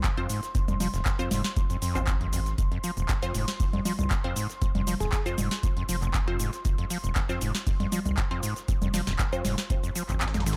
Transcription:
Already playing: analog synth pad C6
0.04 acid bass F2, kick, snare, clap, closed hi-hat, shaker
0.17 acid bass F2, synth stab C4 F4 C5, closed hi-hat
0.29 acid bass G#2, closed hi-hat, open hi-hat, shaker
0.43 snare, closed hi-hat, shaker
0.55 acid bass F2, kick, closed hi-hat, shaker
0.68 sub bass F1, acid bass F2, closed hi-hat, low conga, shaker
0.80 acid bass F3, closed hi-hat, open hi-hat, low conga, shaker
0.94 sub bass D#1, acid bass F1, snare, closed hi-hat, shaker
1.05 acid bass F2, kick, snare, clap, closed hi-hat, shaker
1.19 acid bass F2, synth stab C4 F4 C5, closed hi-hat, shaker
1.31 sub bass F1, acid bass G#2, snare, closed hi-hat, open hi-hat, low conga, shaker
1.44 snare, shaker
1.56 acid bass F2, kick, closed hi-hat, shaker
1.70 acid bass F2, closed hi-hat, shaker
1.82 acid bass F2, closed hi-hat, open hi-hat, shaker
1.95 sub bass G#1, acid bass D#2, synth stab C4 F4 C5, clap, closed hi-hat, shaker
2.07 acid bass F2, kick, snare, clap, closed hi-hat, shaker
2.21 acid bass F2, closed hi-hat
2.33 acid bass F2, closed hi-hat, open hi-hat, shaker
2.46 snare, closed hi-hat, shaker
2.58 sub bass F1, acid bass F2, kick, closed hi-hat, shaker
2.72 acid bass F2, closed hi-hat
2.84 acid bass F3, closed hi-hat, open hi-hat, shaker
2.97 sub bass D#1, acid bass F1, closed hi-hat, shaker
3.09 acid bass F2, kick, snare, clap, closed hi-hat, shaker
3.22 acid bass F2, synth stab C4 F4 C5, snare, closed hi-hat, shaker
3.34 sub bass F1, acid bass G#2, closed hi-hat, open hi-hat, shaker
3.48 snare, closed hi-hat, shaker
3.60 acid bass F2, kick, closed hi-hat, open hi-hat, shaker
3.73 acid bass F2, closed hi-hat, low conga
3.85 acid bass F3, closed hi-hat, open hi-hat, low conga, shaker
3.99 acid bass F1, sub bass C2, closed hi-hat, low conga, shaker
4.10 acid bass F2, kick, snare, clap, closed hi-hat, shaker
4.24 acid bass F2, synth stab C4 F4 C5, closed hi-hat
4.36 acid bass G#2, closed hi-hat, open hi-hat, shaker
4.50 snare, closed hi-hat, shaker
4.62 acid bass F2, kick, closed hi-hat, shaker
4.75 sub bass F1, acid bass F2, closed hi-hat, low conga
4.87 acid bass F3, closed hi-hat, open hi-hat, low conga, shaker
5.00 sub bass D#1, acid bass F1, soft synth lead G#4, snare, closed hi-hat, shaker
5.12 acid bass F2, soft synth lead G#4, kick, snare, clap, closed hi-hat, shaker
5.26 acid bass F2, synth stab C4 F4 C5, closed hi-hat, shaker
5.38 sub bass F1, acid bass G#2, closed hi-hat, open hi-hat, low conga, shaker
5.51 snare, closed hi-hat, shaker
5.63 acid bass F2, kick, closed hi-hat, shaker
5.77 acid bass F2, closed hi-hat
5.89 sub bass F1, acid bass F3, closed hi-hat, open hi-hat, shaker
6.02 acid bass F1, clap, closed hi-hat, shaker
6.14 acid bass F2, kick, snare, clap, closed hi-hat, shaker
6.27 acid bass F2, synth stab C4 F4 C5, closed hi-hat
6.40 acid bass G#2, closed hi-hat, open hi-hat, shaker
6.53 snare, closed hi-hat, shaker
6.65 sub bass F1, acid bass F2, kick, closed hi-hat, shaker
6.78 acid bass F2, closed hi-hat
6.90 acid bass F3, closed hi-hat, open hi-hat, shaker
7.04 sub bass D#1, acid bass F1, closed hi-hat, shaker
7.15 acid bass F2, kick, snare, clap, closed hi-hat, shaker
7.29 acid bass F2, synth stab C4 F4 C5, snare, closed hi-hat, shaker
7.41 sub bass F1, acid bass G#2, closed hi-hat, open hi-hat, shaker
7.55 snare, closed hi-hat, shaker
7.67 acid bass F2, kick, closed hi-hat, open hi-hat, shaker
7.80 acid bass F2, closed hi-hat, low conga
7.92 acid bass F3, closed hi-hat, open hi-hat, low conga, shaker
8.05 acid bass F1, sub bass C2, closed hi-hat, low conga, shaker
8.17 acid bass F2, kick, snare, clap, closed hi-hat, shaker
8.31 acid bass F2, synth stab C4 F4 C5, closed hi-hat
8.43 acid bass G#2, closed hi-hat, open hi-hat, shaker
8.56 snare, closed hi-hat, shaker
8.68 acid bass F2, kick, closed hi-hat, shaker
8.82 sub bass F1, acid bass F2, closed hi-hat, low conga, shaker
8.94 acid bass F3, snare, closed hi-hat, open hi-hat, low conga, shaker
9.07 sub bass D#1, acid bass F1, snare, closed hi-hat, shaker
9.19 acid bass F2, kick, snare, clap, closed hi-hat, shaker
9.33 acid bass F2, synth stab C4 F4 C5, closed hi-hat, shaker
9.45 sub bass F1, acid bass G#2, snare, closed hi-hat, open hi-hat, low conga, shaker
9.58 snare, closed hi-hat, shaker
9.70 acid bass F2, kick, closed hi-hat, shaker
9.83 acid bass F2, closed hi-hat, shaker
9.96 acid bass F3, closed hi-hat, open hi-hat, shaker
10.09 acid bass F1, sub bass G#1, clap, closed hi-hat, shaker
10.21 acid bass F2, snare, clap, closed hi-hat, shaker
10.28 snare, closed hi-hat
10.34 acid bass F2, snare, closed hi-hat, high tom, shaker
10.40 snare, closed hi-hat
10.46 acid bass G#2, snare, closed hi-hat, open hi-hat, mid tom, shaker
10.53 snare, closed hi-hat

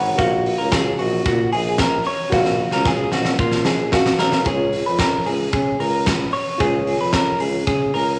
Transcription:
Already playing: tuba G#1, reed electric piano A#4 B4 F#5 A#5, clean electric guitar C#5
0.16 tuba A#1, reed electric piano F#4 A#4 F5, clean electric guitar F#4, kick, closed hi-hat
0.46 open hi-hat
0.58 tuba C#2, clean electric guitar A#4
0.72 clean electric guitar G#4, kick, snare, closed hi-hat
0.99 tuba A#1, clean electric guitar F#4, open hi-hat
1.25 tuba A#2, clean electric guitar F#4, kick, closed hi-hat
1.52 tuba A#1, clean electric guitar G#4, open hi-hat
1.78 clean electric guitar A#4, kick, snare, closed hi-hat
2.05 clean electric guitar C#5, open hi-hat
2.30 tuba A#1, reed electric piano F#4 A#4 F5, clean electric guitar F#4, kick, snare
2.45 snare
2.71 tuba C#2, clean electric guitar A#4, snare
2.85 clean electric guitar G#4, kick, snare
3.12 tuba A#1, clean electric guitar F#4, snare
3.25 snare
3.39 tuba A#2, clean electric guitar F4, kick
3.51 snare
3.65 tuba A#1, clean electric guitar G#4, snare
3.92 reed electric piano F#4 A#4 F5, clean electric guitar F#4, kick, snare
4.06 snare
4.19 tuba B1, clean electric guitar A#4, snare
4.32 snare
4.44 tuba C#2, reed electric piano F4 G#4 C#5, clean electric guitar G#4, kick, closed hi-hat
4.73 open hi-hat
4.86 tuba F2, clean electric guitar B4
4.99 clean electric guitar A#4, kick, snare, closed hi-hat
5.26 tuba C#2, clean electric guitar G#4, open hi-hat
5.53 tuba C#3, clean electric guitar G#4, kick, closed hi-hat
5.80 tuba C#2, clean electric guitar A#4, open hi-hat
6.06 clean electric guitar B4, kick, snare, closed hi-hat
6.33 clean electric guitar C#5, open hi-hat
6.58 tuba C#2, reed electric piano F4 G#4 C#5, clean electric guitar G#4, kick, closed hi-hat
6.87 open hi-hat
7.00 tuba F2, clean electric guitar B4
7.13 clean electric guitar A#4, kick, snare, closed hi-hat
7.40 tuba C#2, clean electric guitar G#4, open hi-hat
7.67 tuba C#3, clean electric guitar G#4, kick, closed hi-hat
7.94 tuba C#2, clean electric guitar A#4, open hi-hat

